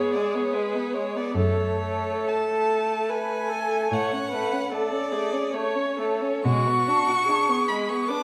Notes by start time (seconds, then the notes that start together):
Already playing: B3 G#4 C#5
0.13 G#3 D5
0.34 B3 C#5
0.53 G#3 B4
0.75 B3
0.94 G#3 C#5
1.16 B3 D5
1.35 F#2 A3 A4 C#5
1.59 A3
1.81 A3 A4
2.06 A3
2.28 A3 A5
2.50 A3
2.71 A3
2.90 A3
3.09 A3 B4 G#5
3.31 A3
3.50 A3 A4
3.71 A3
3.91 A2 A3 C#5 F#5
4.13 C#4
4.31 A3 B4
4.53 C#4
4.72 A3 A4 D5
4.91 C#4
5.12 A3 G#4
5.32 C#4
5.54 A3 C#5
5.75 C#4
5.98 A3 A4
6.22 C#4
6.44 B2 G#3 F#4 C#6
6.67 B3
6.88 D4
7.08 F#4
7.27 D4 G#4
7.49 B3
7.68 G#3 B5
7.89 B3 C#6
8.08 D4 B4 D6